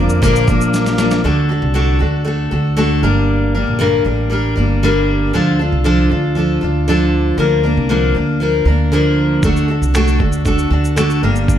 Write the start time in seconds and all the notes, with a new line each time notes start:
Already playing: F2 D3 A#3 D4 A#4 D5 F5 D6
0.00 F3
0.09 shaker
0.22 A#1 A#2 D3 F3 A#3 D4 A#4, kick, shaker
0.36 shaker
0.48 F3 A#3 D4 A#4, kick, shaker
0.61 shaker
0.74 snare, shaker
0.86 snare, shaker
0.98 F3 A#3 D4 A#4, snare, shaker
1.11 snare, shaker
1.24 D2 D3 A3 D4 F#4 A4
1.49 D4 F#4 A4
1.62 C2
1.74 D3 A3 D4 F#4 A4
1.99 D2 D4 F#4 A4
2.25 A3 D4 F#4 A4
2.51 D2 D4 F#4 A4
2.77 D3 A3 D4 F#4 A4
3.03 G1 G2 D3 G3 A#3 D4 A#4
3.55 G3 A#3 D4 A#4
3.67 A#1
3.79 G2 D3 G3 A#3 D4 A#4
4.04 A1 G3 A#3 D4 A#4
4.30 G3 A#3 D4 A#4
4.56 G1 G3 A#3 D4 A#4
4.83 G2 D3 G3 A#3 D4 A#4
5.33 D2 D3 F3 D4 F4 A4
5.59 D4 F4 A4
5.72 C2
5.84 D3 F3 D4 F4 A4
6.09 D2 D4 F4 A4
6.35 F3 D4 F4 A4
6.61 D2 D4 F4 A4
6.88 D3 F3 D4 F4 A4
7.38 D2 D3 F3 A#3 D4 A#4
7.63 A#3 D4 A#4
7.77 C2
7.89 D3 F3 A#3 D4 A#4
8.15 D2 A#3 D4 A#4
8.40 F3 A#3 D4 A#4
8.65 D2 D4 A#4
8.69 A#3
8.92 D3 F3 A#3 D4 A#4
9.43 D2 D3 A3 D4 F#4 A4, kick, shaker
9.57 shaker
9.68 D4 F#4 A4
9.82 C2, shaker
9.94 D3 A3 D4 F#4 A4, finger snap, shaker
10.08 shaker
10.19 D2 D4 F#4 A4, kick
10.32 shaker
10.45 A3 D4 F#4 A4, kick, shaker
10.58 shaker
10.70 D2 D4 F#4 A4
10.85 shaker
10.96 D3 A3 D4 F#4 A4, finger snap, shaker
11.10 shaker
11.23 G1 G2 D3 G3 A#3 D4 A#4
11.36 shaker
11.48 kick, shaker